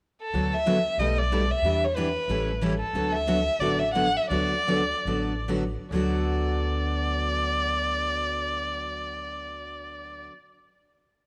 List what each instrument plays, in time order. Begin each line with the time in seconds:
0.22 violin A4
0.33 upright bass D2, steel-string acoustic guitar D3 F#3 B3 F#4 A4
0.54 violin E5
0.66 steel-string acoustic guitar D3 F#3 B3 F#4 A4
0.98 upright bass B1, steel-string acoustic guitar B2 G3 A3 D#4 A4 B4, violin D#5
1.19 violin D5
1.31 steel-string acoustic guitar B2 G3 A3 D#4 A4 B4
1.51 violin E5
1.62 upright bass E2, steel-string acoustic guitar E3 G3 B3 D4 E4 G4 B4
1.85 violin C#5
1.96 steel-string acoustic guitar E3 G3 B3 D4 E4 G4 B4, violin B4
2.28 upright bass A1, steel-string acoustic guitar E3 G3 C#4 E4 A4
2.62 steel-string acoustic guitar E3 G3 C#4 E4 A4
2.80 violin A4
2.93 upright bass D2, steel-string acoustic guitar D3 F#3 B3 F#4 A4
3.12 violin E5
3.27 steel-string acoustic guitar D3 F#3 B3 F#4 A4
3.59 upright bass A1, steel-string acoustic guitar D3 F#3 B3 F#4 A4, violin D5
3.79 violin E5
3.93 steel-string acoustic guitar D3 F#3 B3 F#4 A4, violin F#5
4.17 violin E5
4.30 upright bass D2, steel-string acoustic guitar D3 F#3 B3 F#4 A4, violin D5
4.68 steel-string acoustic guitar D3 F#3 B3 F#4 A4
5.05 upright bass A1, steel-string acoustic guitar D3 F#3 B3 F#4 A4
5.49 steel-string acoustic guitar D3 F#3 B3 F#4 A4
5.91 upright bass D2, steel-string acoustic guitar D3 F#3 B3, violin D5
5.95 steel-string acoustic guitar F#4 A4